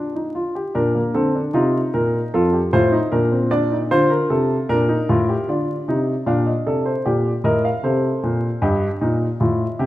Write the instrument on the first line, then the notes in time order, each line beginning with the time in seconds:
grand piano
Already playing: A#2 D4 D5
0.15 D#4
0.35 F4
0.55 G4
0.75 A#2 D4 A#4
0.95 A#3
1.14 D3 C4 A4
1.35 D4
1.54 C3 D#4 F4
1.94 A#2 A#4
2.34 F2 F4 A4
2.53 G4
2.73 A2 F4 C5
2.92 D#4
3.12 A#2 D4 A#4
3.31 C4
3.51 D4 D5
3.71 D#4
3.91 D3 F4 C5
4.10 A#4
4.30 C3 A4
4.69 A#2 D4 A#4
4.89 D#4
5.09 A2 F4
5.29 G4
5.49 D3 F4 D5
5.88 C3 D#4
6.26 A#2 D4 F5
6.47 D#5
6.67 C3 A4 D5
6.86 C5
7.06 A#2 G4 D5
7.44 A2 A#4 D#5
7.65 F5
7.83 C3 A4 C5
8.23 A#2
8.62 G2 G4 D#5
9.01 A#2 D#4
9.40 A2 F4
9.79 C3 G4